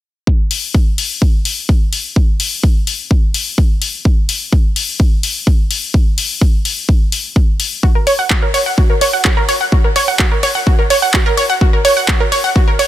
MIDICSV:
0, 0, Header, 1, 3, 480
1, 0, Start_track
1, 0, Tempo, 472441
1, 278, Time_signature, 4, 2, 24, 8
1, 13080, End_track
2, 0, Start_track
2, 0, Title_t, "Synth pluck"
2, 0, Program_c, 0, 84
2, 7957, Note_on_c, 0, 66, 80
2, 8044, Note_off_c, 0, 66, 0
2, 8080, Note_on_c, 0, 70, 73
2, 8136, Note_off_c, 0, 70, 0
2, 8198, Note_on_c, 0, 73, 99
2, 8284, Note_off_c, 0, 73, 0
2, 8319, Note_on_c, 0, 78, 76
2, 8353, Note_off_c, 0, 78, 0
2, 8436, Note_on_c, 0, 66, 80
2, 8495, Note_off_c, 0, 66, 0
2, 8559, Note_on_c, 0, 70, 77
2, 8593, Note_off_c, 0, 70, 0
2, 8677, Note_on_c, 0, 73, 99
2, 8712, Note_off_c, 0, 73, 0
2, 8800, Note_on_c, 0, 78, 75
2, 8856, Note_off_c, 0, 78, 0
2, 8918, Note_on_c, 0, 66, 83
2, 9005, Note_off_c, 0, 66, 0
2, 9041, Note_on_c, 0, 70, 73
2, 9074, Note_off_c, 0, 70, 0
2, 9158, Note_on_c, 0, 73, 96
2, 9245, Note_off_c, 0, 73, 0
2, 9280, Note_on_c, 0, 78, 72
2, 9363, Note_off_c, 0, 78, 0
2, 9398, Note_on_c, 0, 66, 81
2, 9433, Note_off_c, 0, 66, 0
2, 9520, Note_on_c, 0, 70, 99
2, 9576, Note_off_c, 0, 70, 0
2, 9638, Note_on_c, 0, 73, 99
2, 9672, Note_off_c, 0, 73, 0
2, 9761, Note_on_c, 0, 78, 77
2, 9816, Note_off_c, 0, 78, 0
2, 9878, Note_on_c, 0, 66, 82
2, 9965, Note_off_c, 0, 66, 0
2, 10001, Note_on_c, 0, 70, 73
2, 10056, Note_off_c, 0, 70, 0
2, 10119, Note_on_c, 0, 73, 100
2, 10205, Note_off_c, 0, 73, 0
2, 10241, Note_on_c, 0, 78, 76
2, 10274, Note_off_c, 0, 78, 0
2, 10359, Note_on_c, 0, 66, 79
2, 10416, Note_off_c, 0, 66, 0
2, 10480, Note_on_c, 0, 70, 76
2, 10514, Note_off_c, 0, 70, 0
2, 10598, Note_on_c, 0, 73, 95
2, 10633, Note_off_c, 0, 73, 0
2, 10720, Note_on_c, 0, 78, 73
2, 10775, Note_off_c, 0, 78, 0
2, 10839, Note_on_c, 0, 66, 83
2, 10925, Note_off_c, 0, 66, 0
2, 10960, Note_on_c, 0, 70, 74
2, 10994, Note_off_c, 0, 70, 0
2, 11078, Note_on_c, 0, 73, 96
2, 11164, Note_off_c, 0, 73, 0
2, 11199, Note_on_c, 0, 78, 77
2, 11283, Note_off_c, 0, 78, 0
2, 11316, Note_on_c, 0, 66, 84
2, 11352, Note_off_c, 0, 66, 0
2, 11440, Note_on_c, 0, 70, 99
2, 11496, Note_off_c, 0, 70, 0
2, 11556, Note_on_c, 0, 73, 97
2, 11592, Note_off_c, 0, 73, 0
2, 11679, Note_on_c, 0, 78, 78
2, 11735, Note_off_c, 0, 78, 0
2, 11798, Note_on_c, 0, 66, 81
2, 11884, Note_off_c, 0, 66, 0
2, 11920, Note_on_c, 0, 70, 72
2, 11976, Note_off_c, 0, 70, 0
2, 12037, Note_on_c, 0, 73, 97
2, 12124, Note_off_c, 0, 73, 0
2, 12159, Note_on_c, 0, 78, 77
2, 12193, Note_off_c, 0, 78, 0
2, 12277, Note_on_c, 0, 66, 82
2, 12335, Note_off_c, 0, 66, 0
2, 12399, Note_on_c, 0, 70, 75
2, 12433, Note_off_c, 0, 70, 0
2, 12516, Note_on_c, 0, 73, 97
2, 12552, Note_off_c, 0, 73, 0
2, 12639, Note_on_c, 0, 78, 77
2, 12695, Note_off_c, 0, 78, 0
2, 12756, Note_on_c, 0, 66, 81
2, 12844, Note_off_c, 0, 66, 0
2, 12878, Note_on_c, 0, 70, 74
2, 12913, Note_off_c, 0, 70, 0
2, 12996, Note_on_c, 0, 73, 97
2, 13080, Note_off_c, 0, 73, 0
2, 13080, End_track
3, 0, Start_track
3, 0, Title_t, "Drums"
3, 277, Note_on_c, 9, 36, 104
3, 378, Note_off_c, 9, 36, 0
3, 516, Note_on_c, 9, 46, 95
3, 618, Note_off_c, 9, 46, 0
3, 757, Note_on_c, 9, 36, 96
3, 858, Note_off_c, 9, 36, 0
3, 997, Note_on_c, 9, 46, 88
3, 1098, Note_off_c, 9, 46, 0
3, 1237, Note_on_c, 9, 36, 116
3, 1338, Note_off_c, 9, 36, 0
3, 1476, Note_on_c, 9, 46, 98
3, 1578, Note_off_c, 9, 46, 0
3, 1717, Note_on_c, 9, 36, 96
3, 1818, Note_off_c, 9, 36, 0
3, 1957, Note_on_c, 9, 46, 86
3, 2058, Note_off_c, 9, 46, 0
3, 2197, Note_on_c, 9, 36, 113
3, 2299, Note_off_c, 9, 36, 0
3, 2437, Note_on_c, 9, 46, 100
3, 2538, Note_off_c, 9, 46, 0
3, 2677, Note_on_c, 9, 36, 102
3, 2778, Note_off_c, 9, 36, 0
3, 2917, Note_on_c, 9, 46, 88
3, 3019, Note_off_c, 9, 46, 0
3, 3157, Note_on_c, 9, 36, 121
3, 3259, Note_off_c, 9, 36, 0
3, 3397, Note_on_c, 9, 46, 104
3, 3499, Note_off_c, 9, 46, 0
3, 3637, Note_on_c, 9, 36, 99
3, 3739, Note_off_c, 9, 36, 0
3, 3877, Note_on_c, 9, 46, 93
3, 3978, Note_off_c, 9, 46, 0
3, 4117, Note_on_c, 9, 36, 114
3, 4219, Note_off_c, 9, 36, 0
3, 4357, Note_on_c, 9, 46, 102
3, 4459, Note_off_c, 9, 46, 0
3, 4597, Note_on_c, 9, 36, 101
3, 4699, Note_off_c, 9, 36, 0
3, 4837, Note_on_c, 9, 46, 91
3, 4939, Note_off_c, 9, 46, 0
3, 5077, Note_on_c, 9, 36, 121
3, 5179, Note_off_c, 9, 36, 0
3, 5317, Note_on_c, 9, 46, 104
3, 5419, Note_off_c, 9, 46, 0
3, 5557, Note_on_c, 9, 36, 105
3, 5659, Note_off_c, 9, 36, 0
3, 5797, Note_on_c, 9, 46, 93
3, 5899, Note_off_c, 9, 46, 0
3, 6037, Note_on_c, 9, 36, 115
3, 6138, Note_off_c, 9, 36, 0
3, 6277, Note_on_c, 9, 46, 104
3, 6379, Note_off_c, 9, 46, 0
3, 6517, Note_on_c, 9, 36, 103
3, 6619, Note_off_c, 9, 36, 0
3, 6758, Note_on_c, 9, 46, 89
3, 6860, Note_off_c, 9, 46, 0
3, 6997, Note_on_c, 9, 36, 118
3, 7099, Note_off_c, 9, 36, 0
3, 7237, Note_on_c, 9, 46, 104
3, 7339, Note_off_c, 9, 46, 0
3, 7478, Note_on_c, 9, 36, 100
3, 7579, Note_off_c, 9, 36, 0
3, 7718, Note_on_c, 9, 46, 94
3, 7820, Note_off_c, 9, 46, 0
3, 7958, Note_on_c, 9, 36, 111
3, 8060, Note_off_c, 9, 36, 0
3, 8198, Note_on_c, 9, 46, 99
3, 8299, Note_off_c, 9, 46, 0
3, 8436, Note_on_c, 9, 39, 108
3, 8438, Note_on_c, 9, 36, 96
3, 8538, Note_off_c, 9, 39, 0
3, 8540, Note_off_c, 9, 36, 0
3, 8678, Note_on_c, 9, 46, 87
3, 8780, Note_off_c, 9, 46, 0
3, 8918, Note_on_c, 9, 36, 115
3, 9020, Note_off_c, 9, 36, 0
3, 9157, Note_on_c, 9, 46, 102
3, 9259, Note_off_c, 9, 46, 0
3, 9395, Note_on_c, 9, 39, 106
3, 9398, Note_on_c, 9, 36, 100
3, 9497, Note_off_c, 9, 39, 0
3, 9500, Note_off_c, 9, 36, 0
3, 9638, Note_on_c, 9, 46, 87
3, 9740, Note_off_c, 9, 46, 0
3, 9878, Note_on_c, 9, 36, 110
3, 9980, Note_off_c, 9, 36, 0
3, 10118, Note_on_c, 9, 46, 95
3, 10219, Note_off_c, 9, 46, 0
3, 10356, Note_on_c, 9, 39, 110
3, 10358, Note_on_c, 9, 36, 99
3, 10458, Note_off_c, 9, 39, 0
3, 10459, Note_off_c, 9, 36, 0
3, 10597, Note_on_c, 9, 46, 84
3, 10699, Note_off_c, 9, 46, 0
3, 10838, Note_on_c, 9, 36, 113
3, 10939, Note_off_c, 9, 36, 0
3, 11077, Note_on_c, 9, 46, 100
3, 11179, Note_off_c, 9, 46, 0
3, 11316, Note_on_c, 9, 39, 110
3, 11318, Note_on_c, 9, 36, 98
3, 11417, Note_off_c, 9, 39, 0
3, 11419, Note_off_c, 9, 36, 0
3, 11557, Note_on_c, 9, 46, 86
3, 11658, Note_off_c, 9, 46, 0
3, 11798, Note_on_c, 9, 36, 108
3, 11900, Note_off_c, 9, 36, 0
3, 12037, Note_on_c, 9, 46, 95
3, 12139, Note_off_c, 9, 46, 0
3, 12276, Note_on_c, 9, 39, 113
3, 12278, Note_on_c, 9, 36, 95
3, 12377, Note_off_c, 9, 39, 0
3, 12380, Note_off_c, 9, 36, 0
3, 12518, Note_on_c, 9, 46, 85
3, 12620, Note_off_c, 9, 46, 0
3, 12758, Note_on_c, 9, 36, 110
3, 12860, Note_off_c, 9, 36, 0
3, 12998, Note_on_c, 9, 46, 101
3, 13080, Note_off_c, 9, 46, 0
3, 13080, End_track
0, 0, End_of_file